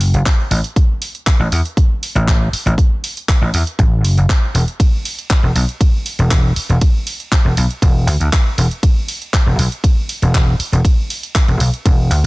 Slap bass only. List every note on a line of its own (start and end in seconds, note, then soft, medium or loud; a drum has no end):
0.01 0.09 F#1 medium
0.14 0.21 F#1 medium
0.51 0.59 A1 loud
1.40 1.47 A1 loud
1.52 1.60 E2 medium
2.15 2.52 A1 loud
2.53 muted slap bass stroke soft
2.66 2.73 A1 loud
3.42 3.49 A1 loud
3.54 3.62 E2 loud
3.79 4.04 A1 medium
4.04 4.12 F#1 medium
4.17 4.25 F#1 medium
4.54 4.63 E1 loud
5.43 5.51 E1 loud
5.55 5.63 B1 medium
6.19 6.56 E1 loud
6.56 muted slap bass stroke soft
6.69 6.77 E1 loud
7.45 7.52 E1 loud
7.57 7.65 B1 medium
7.82 8.07 E1 loud
8.07 8.15 D2 medium
8.20 8.28 D2 medium
8.58 8.66 E1 loud
9.46 9.54 E1 loud
9.58 9.67 B1 medium
10.22 10.59 E1 loud
10.59 muted slap bass stroke soft
10.72 10.80 E1 loud
11.48 11.56 E1 loud
11.60 11.68 B1 medium
11.85 12.11 E1 loud
12.11 12.19 D2 medium